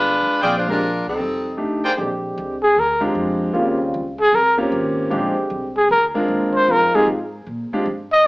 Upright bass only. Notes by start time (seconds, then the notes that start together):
Already playing: G1
0.27 muted upright bass stroke
0.42 A#1
1.07 C2
1.20 F1
1.98 A#1
2.38 C2
2.76 D2
3.15 F2
3.55 D#2
3.94 C#2
4.33 C2
4.72 G#1
5.11 A#1
5.37 muted upright bass stroke
5.50 C2
5.89 D2
6.28 D#2
6.54 muted upright bass stroke
6.68 F2
6.94 muted upright bass stroke
7.07 G#2
7.47 A#2
7.72 muted upright bass stroke
7.86 G2